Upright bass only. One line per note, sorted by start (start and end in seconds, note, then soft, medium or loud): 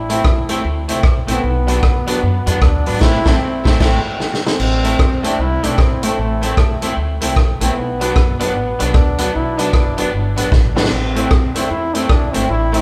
0.00 0.19 A1 loud
0.64 0.85 D2 loud
0.89 1.03 C2 medium
1.03 1.24 A1 medium
1.28 1.41 A#1 medium
1.44 1.77 B1 loud
2.23 2.43 F#2 loud
2.47 2.60 E2 loud
2.62 2.83 D2 medium
2.87 2.99 G#1 medium
3.01 3.18 A1 medium
3.26 3.36 A1 medium
3.65 3.76 A1 loud
3.80 3.97 A1 loud
4.59 4.93 A1 loud
5.38 5.59 C2 loud
5.63 5.78 B1 medium
5.78 6.12 A1 medium
6.17 6.51 A1 loud
6.97 7.17 D2 medium
7.21 7.36 C2 medium
7.36 7.57 A1 medium
7.61 7.74 A#1 medium
7.76 8.10 B1 loud
8.16 8.56 F#1 medium
8.56 8.76 A1 loud
8.81 8.93 B1 medium
8.94 9.28 D2 medium
9.35 9.68 B1 loud
9.73 10.07 F#1 medium
10.13 10.33 G1 loud
10.37 10.50 A1 medium
10.52 10.73 A1 loud
10.77 10.89 G#1 medium
10.92 11.25 A1 loud
11.70 12.04 E2 loud
12.09 12.30 D2 medium
12.34 12.47 G#1 medium
12.49 12.81 A1 loud